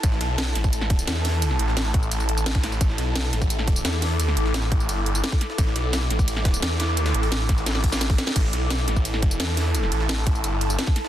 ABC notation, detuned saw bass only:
X:1
M:4/4
L:1/8
Q:1/4=173
K:C
V:1 name="Detuned saw bass" clef=bass
A,,, B,,,2 A,,,3 E,,2- | E,, A,,,3 A,,,3 A,,, | A,,, B,,,2 A,,,3 E,,2- | E,, A,,,3 G,,,2 z2 |
A,,, B,,,2 A,,,3 E,,2- | E,, A,,,3 A,,,3 z | A,,, B,,,2 A,,,3 E,,2- | E,, A,,,3 G,,,2 z2 |]